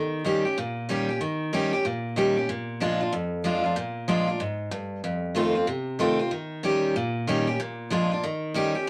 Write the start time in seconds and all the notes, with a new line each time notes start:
Already playing: D#3
0.24 D#3 G3 C#4 G4
0.45 C#4 G4
0.58 A#2
0.89 D#3 G3 C#4 G4
1.09 C#4 G4
1.21 D#3
1.53 D#3 G3 C#4 G4
1.73 C#4 G4
1.85 A#2
2.16 D#3 G3 C#4 G4
2.37 C#4 G4
2.49 A#2
2.80 F3 G#3 D4 F4
3.01 D4 F4
3.13 F2
3.44 F3 G#3 D4 F4
3.64 D4 F4
3.76 A#2
4.08 F3 G#3 D4 F4
4.28 D4 F4
4.40 G#2
4.71 G2
5.04 F2
5.35 D#3 A3 C4 F4
5.55 C4 F4
5.67 C3
5.99 D#3 A3 C4 F4
6.19 C4 F4
6.31 D#3
6.63 D#3 G3 C#4 G4
6.96 A#2
7.27 D#3 G3 C#4 G4
7.47 C#4 G4
7.60 A#2
7.90 F3 G#3 D4 F4
8.12 D4 F4
8.24 D#3
8.54 D#3 G3 C#4 G4
8.75 C#4 G4